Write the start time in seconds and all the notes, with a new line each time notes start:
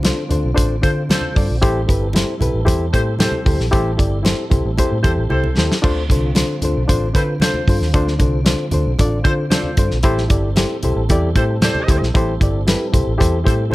Already playing: C2 D3 C4 F4
0.03 D4 F4 A4 C5, snare, closed hi-hat, high conga
0.29 D2 D4 F4 A4 C5, closed hi-hat, muted conga, low conga
0.44 B1
0.55 A1 D4 F4 A4 C5, kick, closed hi-hat, low conga
0.82 D3 D4 F4 A4 C5, kick, closed hi-hat, muted conga
1.09 D4 F4 A4 C5, snare, closed hi-hat, high conga
1.21 high conga
1.35 G2 D4 F4 A4 D5, kick, open hi-hat
1.50 A#1
1.62 A1 A2 G3 E4 G4 A4 C5, kick, closed hi-hat
1.87 G1 E4 G4 A4 B4, kick, closed hi-hat, muted conga
2.13 E4 G4 A4 C5, snare, closed hi-hat, high conga
2.40 B1 E4 G4 A4 B4, closed hi-hat, muted conga, low conga
2.54 A1
2.65 E2 E4 G4 A4 C5, kick, closed hi-hat, low conga
2.93 A2 E4 G4 A4 C5, kick, closed hi-hat, muted conga
3.19 E4 G4 A4 C5, snare, closed hi-hat, high conga
3.32 high conga
3.45 D2 E4 G4 A4 C5, kick, open hi-hat
3.60 A#1, snare
3.71 A1 A2 E4 G4 A4 C5, kick, closed hi-hat
3.97 G1 E4 G4 A4 D5, kick, closed hi-hat, muted conga
4.23 E4 G4 A4 C5, snare, closed hi-hat, high conga
4.50 C2 E4 G4 A4 C5, kick, closed hi-hat, muted conga, low conga
4.65 A1
4.78 E4 G4 A4 C5, kick, closed hi-hat, low conga
4.92 A2
5.03 E2 E4 G4 A4 C5, kick, closed hi-hat, muted conga
5.18 A1
5.30 C2 E4 G4 A4 C5, high conga
5.44 high conga
5.57 D#2 E4 G4 A4 C5, snare
5.72 snare
5.82 D2 D3 C4 D4 F4 A4 C5, kick, crash
6.09 C2 D4 F4 A4 C5, kick, closed hi-hat, muted conga
6.35 D4 F4 A4 C5, snare, closed hi-hat, high conga
6.62 D2 D4 F4 A4 C5, closed hi-hat, muted conga, low conga
6.76 B1
6.88 A1 D4 F4 A4 C5, kick, closed hi-hat, low conga
7.13 D3 D4 F4 A4 B4 C5, kick, closed hi-hat, muted conga
7.40 D4 F4 A4 C5, snare, closed hi-hat, high conga
7.54 high conga
7.68 G2 D4 F4 A4 C5, kick, open hi-hat
7.81 D#2, snare
7.94 D2 D3 D4 F4 A4 C5, kick, closed hi-hat
8.08 snare
8.19 C2 D4 F4 A4 C5, kick, closed hi-hat, muted conga
8.45 D4 F4 A4 C5, snare, closed hi-hat, high conga
8.71 D2 D4 F4 A4 C5, closed hi-hat, low conga
8.86 B1
8.99 A1 D4 F4 A4 D5, kick, closed hi-hat, low conga
9.25 D3 D4 F4 A4 C5, kick, closed hi-hat, muted conga
9.50 D4 F4 A4 C5 D5, snare, closed hi-hat, high conga
9.63 high conga
9.77 G2 D4 F4 A4 C5, kick, closed hi-hat
9.91 A#1, snare
10.03 A1 A2 G3 E4 G4 A4 C5, kick, closed hi-hat
10.18 snare
10.28 G1 E4 G4 A4 D5, kick, closed hi-hat, muted conga
10.56 E4 G4 A4 C5, snare, closed hi-hat, high conga
10.83 B1 E4 G4 A4 C5, closed hi-hat, muted conga, low conga
10.96 A1
11.09 E2 E4 G4 A4 D5, kick, closed hi-hat, low conga
11.35 A2 E4 G4 A4 C5, kick, closed hi-hat, muted conga
11.61 E4 G4 A4 C5 D5, snare, closed hi-hat, high conga
11.75 high conga
11.88 D2 E4 G4 A4 C5, kick, closed hi-hat
12.02 A#1, snare
12.15 A1 A2 E4 G4 A4 C5, kick, closed hi-hat
12.40 G1 E4 G4 A4 D5, kick, closed hi-hat, muted conga
12.67 E4 G4 A4 B4, snare, closed hi-hat, high conga
12.92 C2 E4 G4 A4 C5, kick, closed hi-hat, muted conga, low conga
13.07 A1
13.18 E2 E4 G4 A4 C5, kick, closed hi-hat, low conga
13.44 A2 E4 G4 A4 C5, kick, closed hi-hat, muted conga
13.70 E4 G4 A4 C5, high conga